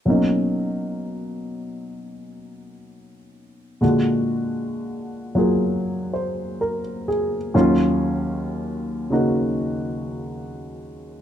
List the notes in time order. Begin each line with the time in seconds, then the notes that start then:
0.05 B2 F#3 A#3 C#4
0.10 D#4
3.81 A#2 D3 G#3 D4 F#4
5.35 F#3 A#3 F4 G#4
6.14 C5
6.61 A#4
7.08 G#4
7.54 D#2 D#3 F#3 C#4 F4
9.10 C#3 A#3 D#4 F#4